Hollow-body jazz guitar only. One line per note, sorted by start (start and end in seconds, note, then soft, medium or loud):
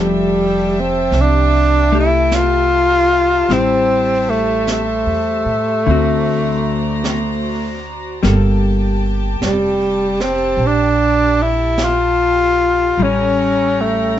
0.00 3.50 F3 soft
0.00 1.91 A3 soft
0.00 1.94 G4 soft
1.92 3.50 A3 soft
1.92 3.51 G4 soft
3.50 5.87 G3 soft
3.50 5.88 C4 soft
3.50 5.88 E4 soft
5.87 8.23 D3 soft
5.87 8.24 C4 medium
5.91 8.25 F#4 medium
8.23 12.98 G3 soft
8.23 12.99 A#3 soft
8.28 13.01 A4 soft
12.99 14.19 G3 soft
13.04 14.19 C#4 soft